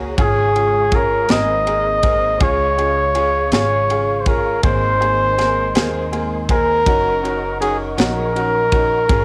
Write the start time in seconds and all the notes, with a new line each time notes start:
Already playing: C#2 C#4 F#4 G#4 C#5 F#5 A#5
0.17 G#1 G#2 C#3 G#3 C#4 F4 G#4 C#5 F5 C#6, kick, ride
0.22 G#4
0.56 C#4 F4 G#4, ride
0.91 G#3 C#4 F4 G#4 A#4, kick, ride
1.28 G#1 G#2 D#3 A#3 C4 D#4 G#4 A#4 C5 D#5 A#5, snare, ride
1.67 C4 G#4 A#4, ride
2.02 A#3 C4 D#4 G#4 A#4, kick, ride
2.39 C#2 C#3 G#3 C#4 F4 G#4 C#5 F5 C#6, kick, ride
2.43 C#5
2.78 C#4 F4 G#4, ride
3.15 G#3 C#4 F4 G#4, ride
3.52 G#1 C#3 G#3 C#4 F4 G#4 C#5, snare, ride
3.90 C#4 F4 G#4, ride
4.21 C5
4.26 C#4 F4 G#4 A#4, kick, ride
4.63 G#1 G#2 D#3 G#3 A#3 C4 D#4 G#4 A#4 C5 D#5 G#5 C6, kick, ride
5.00 A#3 C4 G#4, ride
5.38 G#3 A#3 C4 D#4 G#4 A#4, snare, ride
5.75 D#2 G#2 D#3 G#3 A#3 C4 D#4 G#4 A#4, snare, ride
6.12 A#3 C4 G#4, ride
6.49 G#3 A#3 C4 D#4 G#4 A#4, kick, ride
6.85 F#1 F#3 C#4 D#4 F#4 A#4 F#5 C#6, kick, ride
7.23 C#4 D#4 F#4, ride
7.60 F#3 C#4 D#4 F#4 G#4 A#4, ride
7.97 A#1 F#3 C#4 D#4 F#4 A#4, snare, ride
8.35 C#4 D#4 F#4, ride
8.72 C#4 D#4 F#4 A#4, kick, ride
9.07 G#1 G#2 C#3 G#3 C#4 F4 G#4 C#5 F5, kick, ride
9.11 F4 G#4